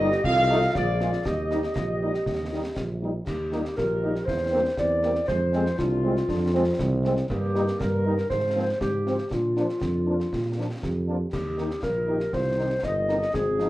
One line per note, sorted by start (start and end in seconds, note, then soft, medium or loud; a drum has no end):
0.00 0.16 G1 medium
0.00 0.10 G3 medium
0.00 0.10 D#4 medium
0.00 0.20 G4 medium
0.00 0.22 G4 medium
0.00 0.24 D#5 medium
0.00 0.25 D#5 loud
0.00 0.70 D#5 medium
0.12 snare medium
0.23 0.66 C2 medium
0.23 0.72 F4 loud
0.23 0.74 A4 medium
0.23 0.71 F5 medium
0.23 0.71 F5 loud
0.23 concert bass drum medium
0.23 snare medium
0.49 0.59 A3 medium
0.49 0.59 D#4 medium
0.49 0.59 F4 medium
0.74 1.17 A#1 medium
0.74 1.28 F4 medium
0.74 1.25 G#4 medium
0.74 1.22 D5 loud
0.74 1.22 D5 medium
0.74 1.25 F5 medium
0.74 concert bass drum medium
0.74 snare medium
1.00 1.10 G#3 soft
1.00 1.10 G#3 medium
1.00 1.10 A#3 medium
1.00 1.10 F4 medium
1.00 snare medium
1.13 snare medium
1.25 1.67 D#2 medium
1.25 2.98 G4 medium
1.25 3.02 G4 medium
1.25 2.76 D#5 medium
1.25 3.01 D#5 medium
1.25 2.76 D#5 medium
1.25 concert bass drum medium
1.25 snare medium
1.50 1.60 G3 medium
1.50 1.60 A#3 soft
1.50 1.60 D#4 medium
1.50 1.61 D#4 medium
1.50 snare medium
1.63 snare medium
1.76 2.14 A#1 medium
1.76 concert bass drum medium
1.76 snare medium
2.02 2.11 G3 soft
2.02 2.11 A#3 soft
2.02 2.11 D#4 soft
2.14 snare soft
2.26 2.68 D#2 medium
2.26 concert bass drum medium
2.26 snare medium
2.52 2.61 G3 soft
2.52 2.62 G3 soft
2.52 2.61 A#3 soft
2.52 2.61 D#4 soft
2.52 2.62 D#4 medium
2.76 3.19 A#1 medium
2.76 concert bass drum medium
2.76 snare medium
3.02 3.11 G3 soft
3.02 3.11 A#3 soft
3.02 3.11 D#4 soft
3.27 3.69 D#2 medium
3.27 3.40 D#4 medium
3.27 3.74 G4 medium
3.27 concert bass drum medium
3.27 snare medium
3.27 crash soft
3.52 3.62 G3 soft
3.52 3.61 A#3 soft
3.52 3.63 A#3 soft
3.52 3.61 D#4 medium
3.52 3.62 D#4 soft
3.52 3.63 F4 medium
3.52 3.61 G4 medium
3.52 snare soft
3.65 snare medium
3.77 4.19 A#1 medium
3.77 4.24 G4 medium
3.77 4.24 A#4 medium
3.77 concert bass drum medium
3.77 snare medium
4.01 4.12 G3 soft
4.01 4.11 A#3 soft
4.01 4.13 A#3 soft
4.01 4.12 D#4 soft
4.01 4.11 G4 soft
4.15 snare soft
4.25 4.70 E2 medium
4.25 4.39 E4 medium
4.25 4.73 C5 medium
4.25 concert bass drum medium
4.25 snare medium
4.52 4.63 G3 medium
4.52 4.61 A#3 medium
4.52 4.63 A#3 medium
4.52 4.61 C4 medium
4.52 4.63 C4 soft
4.52 4.64 D4 medium
4.52 4.62 G4 medium
4.77 5.20 E2 medium
4.77 5.02 C4 medium
4.77 5.29 D5 medium
4.77 concert bass drum medium
4.77 snare medium
5.03 5.14 G3 soft
5.03 5.12 A#3 medium
5.03 5.15 A#3 medium
5.03 5.14 A#3 soft
5.03 5.12 C4 soft
5.03 5.14 C4 soft
5.03 5.12 G4 soft
5.03 snare soft
5.15 snare soft
5.27 5.71 F2 medium
5.27 5.40 G#3 medium
5.27 5.75 C5 medium
5.27 concert bass drum medium
5.27 snare medium
5.52 5.62 G#3 medium
5.52 5.64 G#3 medium
5.52 5.62 C4 medium
5.52 5.78 C4 medium
5.52 5.64 C4 medium
5.52 5.62 F4 medium
5.52 snare soft
5.66 snare medium
5.78 6.21 C2 medium
5.78 6.02 D4 medium
5.78 7.00 F4 medium
5.78 concert bass drum medium
5.78 snare medium
6.03 6.13 G#3 medium
6.03 6.12 C4 medium
6.03 6.15 C4 medium
6.03 6.13 C4 medium
6.03 6.13 F4 medium
6.17 snare soft
6.29 6.71 F2 medium
6.29 6.53 D4 medium
6.29 concert bass drum medium
6.29 snare medium
6.53 6.63 G#3 medium
6.53 6.62 C4 medium
6.53 6.63 C4 medium
6.53 7.26 C4 medium
6.53 6.63 F4 medium
6.79 7.22 C2 medium
6.79 concert bass drum medium
6.79 snare medium
7.03 7.13 G#3 medium
7.03 7.13 C4 medium
7.03 7.13 F4 soft
7.03 snare soft
7.17 snare soft
7.29 7.72 G2 medium
7.29 8.26 A#3 medium
7.29 7.76 G4 medium
7.29 concert bass drum medium
7.29 snare medium
7.29 crash soft
7.54 7.63 G3 medium
7.54 7.64 G3 medium
7.54 7.64 A#3 medium
7.54 7.63 D#4 medium
7.54 7.64 D#4 medium
7.54 snare soft
7.68 snare medium
7.79 8.22 G2 medium
7.79 8.30 A#4 medium
7.79 concert bass drum medium
7.79 snare medium
8.05 8.14 G3 medium
8.05 8.15 G3 medium
8.05 8.14 A#3 medium
8.05 8.14 D#4 medium
8.05 8.14 D#4 soft
8.05 8.14 D#4 medium
8.18 snare soft
8.30 8.73 G#2 medium
8.30 8.54 G#3 medium
8.30 8.77 C5 medium
8.30 concert bass drum medium
8.30 snare medium
8.55 8.65 F3 medium
8.55 8.65 F3 soft
8.55 8.68 A#3 medium
8.55 8.65 C4 medium
8.55 8.66 C4 medium
8.55 8.64 F4 soft
8.81 9.23 G#2 medium
8.81 8.92 C4 soft
8.81 9.28 G4 medium
8.81 concert bass drum medium
8.81 snare medium
9.05 9.15 F3 soft
9.05 9.15 C4 soft
9.05 9.16 C4 soft
9.05 9.17 F4 medium
9.05 9.16 F4 soft
9.05 snare soft
9.18 snare soft
9.31 9.69 A#2 medium
9.31 9.73 D4 medium
9.31 10.83 F4 medium
9.31 concert bass drum medium
9.31 snare medium
9.56 9.66 F3 soft
9.56 9.66 F3 medium
9.56 9.66 A#3 soft
9.56 9.66 D4 soft
9.56 9.66 D4 medium
9.56 9.65 F4 soft
9.56 snare soft
9.69 snare soft
9.81 10.23 F2 medium
9.81 10.33 D4 medium
9.81 concert bass drum medium
9.81 snare medium
10.06 10.16 F3 soft
10.06 10.15 A#3 soft
10.06 10.16 D4 soft
10.06 10.16 F4 soft
10.20 snare soft
10.32 10.74 A#2 medium
10.32 10.81 F4 medium
10.32 concert bass drum medium
10.32 snare medium
10.57 10.67 F3 soft
10.57 10.67 F3 medium
10.57 10.67 A#3 soft
10.57 10.67 D4 soft
10.57 10.66 F4 soft
10.82 11.25 F2 medium
10.82 11.29 G4 soft
10.82 concert bass drum medium
10.82 snare medium
11.07 11.17 F3 soft
11.07 11.17 A#3 soft
11.07 11.16 D4 soft
11.07 11.17 D4 soft
11.07 11.16 F4 soft
11.32 11.75 D#2 medium
11.32 11.79 G4 medium
11.32 concert bass drum medium
11.32 snare medium
11.32 crash soft
11.57 11.66 D#3 soft
11.57 11.68 D#3 soft
11.57 11.68 A#3 soft
11.57 11.66 D#4 medium
11.57 11.68 D#4 soft
11.57 11.67 G4 soft
11.57 snare soft
11.71 snare soft
11.83 12.25 A#1 medium
11.83 11.95 F4 medium
11.83 12.30 A#4 medium
11.83 concert bass drum medium
11.83 snare medium
12.06 12.16 D#3 soft
12.06 12.19 D#3 soft
12.06 12.16 D#4 soft
12.06 12.19 D#4 soft
12.06 12.17 G4 soft
12.06 12.32 G4 soft
12.10 12.19 A#3 soft
12.20 snare soft
12.33 12.75 C2 medium
12.33 12.61 F4 medium
12.33 12.81 C5 medium
12.33 concert bass drum medium
12.33 snare medium
12.57 12.67 D#3 medium
12.57 12.69 D#3 soft
12.57 12.68 C4 soft
12.57 12.67 D#4 soft
12.57 13.34 D#4 medium
12.57 12.69 D#4 soft
12.57 12.67 G4 soft
12.83 13.25 G1 medium
12.83 13.34 D#5 medium
12.83 concert bass drum medium
12.83 snare medium
13.08 13.18 D#3 soft
13.08 13.18 D#3 medium
13.08 13.18 C4 soft
13.08 13.18 D#4 soft
13.08 13.18 D#4 medium
13.08 13.18 G4 soft
13.08 snare soft
13.22 snare soft
13.33 13.70 G#1 medium
13.33 13.61 C4 medium
13.33 13.70 G#4 medium
13.33 concert bass drum medium
13.33 snare medium
13.58 13.68 F3 medium
13.58 13.68 C4 medium
13.58 13.68 D#4 medium
13.58 13.70 D#4 medium
13.58 13.69 F4 soft
13.58 snare soft